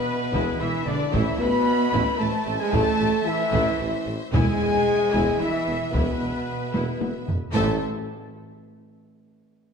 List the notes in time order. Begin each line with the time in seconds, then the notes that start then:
Already playing: B2 B3 B4 E5
0.33 E1 G#3 E4, taiko
0.59 E1 E3 G#3 E4 E5
0.85 E1 D3 G#3 B3 D4 D5, taiko rim
1.11 A1 E3 A3 E4 C5 E5, taiko
1.16 E3
1.39 A1 B2 A3 B3 E4 B4 B5, taiko rim
1.92 A1 A3 E4, taiko
2.18 A1 A3 E4 A4 A5
2.46 A1 A3 C4
2.57 G#3 G#4 G#5
2.71 A1 A3 E4 A4 A5, taiko
2.99 A1 A3 E4
3.24 E3 E4 E5
3.51 A1 A3 E4, taiko
3.78 A1 A3 E4
4.06 A1 A3 C4
4.33 E1 E2 G#3 B3 E4 G#4 E5 G#5, taiko
4.59 E1 B3 E4
5.11 E1 B3 E4, taiko
5.39 E1 E3 B3 E4 B4 E5
5.66 E1 B3
5.92 E1 B2 B3 E4 B4, taiko
6.18 E1 B3 E4
6.22 E1
6.73 E1 B3 E4, taiko high
6.98 E1 B3 E4, taiko high
7.25 E1 B3, taiko low
7.52 A1 A2 A3 E4 A4 C5 E5 A5